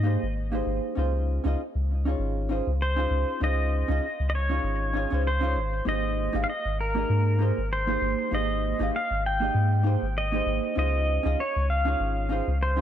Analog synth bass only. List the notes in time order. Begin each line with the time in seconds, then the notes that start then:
Already playing: G#2
0.23 G#1
0.67 G#1
0.97 C#2
1.45 C#2
1.75 C#2
2.19 G#1
2.67 C#2
3.11 C#2
3.42 C#2
3.89 C#2
4.20 C#2
4.64 G#1
5.12 C#2
5.56 G#1
5.87 G#1
6.35 G#1
6.65 G#1
7.10 G#2
7.58 G#1
8.02 G#1
8.32 G#1
8.80 G#1
9.11 G#1
9.55 G#2
10.03 G#1
10.46 G#1
10.77 C#2
11.26 C#2
11.56 C#2
12.00 G#1
12.48 C#2